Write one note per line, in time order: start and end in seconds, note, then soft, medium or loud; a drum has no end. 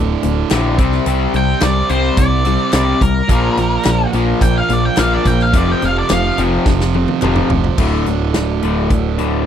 0.00 0.15 D1 medium
0.00 0.20 D2 medium
0.00 0.49 D2 medium
0.00 0.21 A2 medium
0.00 0.50 A2 medium
0.00 0.49 D3 medium
0.23 0.43 D1 medium
0.23 0.48 D2 medium
0.23 0.48 A2 medium
0.23 closed hi-hat medium
0.51 0.79 A#1 medium
0.51 0.77 D2 medium
0.51 0.77 A2 medium
0.51 0.78 D3 medium
0.51 snare loud
0.51 clap medium
0.51 closed hi-hat medium
0.78 0.98 C2 medium
0.78 1.05 C3 medium
0.78 1.05 G3 medium
0.78 1.05 C4 medium
0.78 kick loud
0.78 closed hi-hat medium
0.92 snare soft
1.06 1.26 C2 loud
1.06 1.33 C3 loud
1.06 1.33 G3 medium
1.06 1.34 C4 loud
1.06 closed hi-hat medium
1.34 1.53 C2 medium
1.34 1.60 C3 medium
1.34 1.60 G3 medium
1.34 1.63 G5 medium
1.34 closed hi-hat medium
1.61 1.81 C2 medium
1.61 1.88 C3 medium
1.61 1.88 G3 medium
1.61 2.43 C4 medium
1.61 1.90 D5 loud
1.61 snare loud
1.61 clap medium
1.61 closed hi-hat medium
1.89 2.09 C2 medium
1.89 2.16 C3 medium
1.89 2.17 G3 medium
1.89 2.17 C4 medium
1.89 2.17 C5 medium
1.89 closed hi-hat medium
2.17 2.56 C2 medium
2.17 2.43 C3 medium
2.17 2.43 G3 medium
2.17 2.72 D5 loud
2.17 kick loud
2.17 closed hi-hat medium
2.45 2.71 C3 medium
2.45 2.72 G3 medium
2.45 2.99 C4 medium
2.45 closed hi-hat medium
2.73 2.93 C2 medium
2.73 3.00 C3 medium
2.73 3.01 G3 loud
2.73 3.01 C4 medium
2.73 3.01 D5 medium
2.73 snare loud
2.73 clap medium
2.73 closed hi-hat medium
3.01 3.21 C2 medium
3.01 3.27 C3 medium
3.01 3.27 G3 medium
3.01 4.10 A#4 medium
3.01 kick medium
3.01 closed hi-hat medium
3.29 3.48 A#1 loud
3.29 3.56 A#2 medium
3.29 3.56 F3 loud
3.29 3.57 A#3 loud
3.29 kick loud
3.29 closed hi-hat medium
3.57 3.77 A#1 medium
3.57 3.83 A#2 medium
3.57 3.83 F3 medium
3.57 closed hi-hat medium
3.84 4.05 A#1 medium
3.84 4.11 A#2 medium
3.84 4.11 F3 medium
3.84 snare loud
3.84 clap medium
3.84 closed hi-hat medium
4.13 4.33 A#1 medium
4.13 4.40 A#2 medium
4.13 4.40 F3 loud
4.13 4.41 A#3 medium
4.13 closed hi-hat medium
4.41 4.61 A#1 medium
4.41 4.67 A#2 medium
4.41 4.67 F3 medium
4.41 4.55 G5 loud
4.41 kick loud
4.41 closed hi-hat medium
4.58 4.73 F5 medium
4.69 4.89 A#1 medium
4.69 4.95 A#2 medium
4.69 4.95 F3 medium
4.69 4.85 D5 medium
4.69 closed hi-hat medium
4.85 4.99 G5 medium
4.97 5.17 A#1 medium
4.97 5.24 A#2 medium
4.97 5.24 F3 medium
4.97 5.25 A#3 medium
4.97 5.12 F5 medium
4.97 snare loud
4.97 clap medium
4.97 closed hi-hat medium
5.14 5.26 D5 medium
5.25 5.55 A#1 loud
5.25 5.51 A#2 medium
5.25 5.52 F3 medium
5.25 5.42 G5 loud
5.25 kick medium
5.25 closed hi-hat medium
5.39 5.54 F5 medium
5.39 snare soft
5.54 5.73 F1 loud
5.54 5.80 F2 medium
5.54 5.80 C3 loud
5.54 5.81 F3 loud
5.54 5.69 D5 medium
5.54 kick loud
5.54 closed hi-hat medium
5.72 5.83 G5 medium
5.82 6.02 F1 medium
5.82 6.07 F2 medium
5.82 6.07 C3 medium
5.82 5.97 F5 medium
5.82 closed hi-hat medium
5.99 6.13 D5 medium
6.10 6.30 F1 loud
6.10 6.35 F2 medium
6.10 6.35 C3 medium
6.10 6.38 F5 loud
6.10 snare loud
6.10 clap loud
6.10 closed hi-hat medium
6.38 6.57 F1 loud
6.38 6.64 F2 medium
6.38 6.65 C3 medium
6.38 6.65 F3 medium
6.38 closed hi-hat medium
6.66 7.05 F1 loud
6.66 6.92 F2 medium
6.66 6.92 C3 medium
6.66 kick loud
6.66 snare medium
6.80 snare medium
6.94 7.20 F2 medium
6.94 7.20 C3 medium
6.94 high tom medium
7.08 high tom medium
7.22 7.42 F1 medium
7.22 7.49 F2 medium
7.22 7.49 C3 medium
7.22 7.50 F3 loud
7.22 clap medium
7.22 mid tom medium
7.36 mid tom medium
7.50 7.70 F1 medium
7.50 7.76 F2 medium
7.50 7.76 C3 medium
7.50 floor tom medium
7.64 floor tom medium
7.78 8.04 D1 medium
7.78 8.05 D2 medium
7.78 8.05 A2 medium
7.78 8.06 D3 medium
7.78 kick loud
7.78 crash medium
8.06 8.33 D1 medium
8.06 8.32 D2 medium
8.06 8.32 A2 medium
8.06 closed hi-hat medium
8.34 8.61 D1 medium
8.34 8.60 D2 medium
8.34 8.60 A2 medium
8.34 snare loud
8.34 closed hi-hat medium
8.62 8.89 D1 medium
8.62 8.89 D2 medium
8.62 8.89 A2 medium
8.62 8.90 D3 medium
8.62 closed hi-hat medium
8.90 9.16 D1 medium
8.90 9.16 D2 medium
8.90 9.16 A2 medium
8.90 kick loud
8.90 closed hi-hat medium
9.18 9.45 D1 medium
9.18 9.45 D2 medium
9.18 9.45 A2 medium
9.18 9.46 D3 medium
9.18 closed hi-hat medium